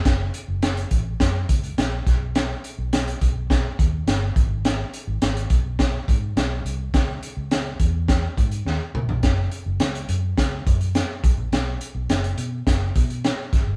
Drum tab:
HH |x-x-xxx-x-xxx-x-|x-x-xxx-x-x-x-x-|x-x-xxx-x-x-x-x-|x-x-x-x-x-xx----|
SD |o---o---o---o-o-|o---o---o---o---|o---o---o---o---|o---o---o---o---|
T2 |----------------|----------------|----------------|--------------o-|
FT |----------------|----------------|----------------|---------------o|
BD |o-----o-o-o---o-|------o-o-o---o-|------o-o-o-----|o-----o-o-o-----|

HH |x-x-xxx-x-xxx-x-|x-x-xxx-x-xxx-x-|
SD |o---o---o---o---|o---o---o---o-o-|
T2 |----------------|----------------|
FT |----------------|----------------|
BD |o-------o-o---o-|--------o-o---o-|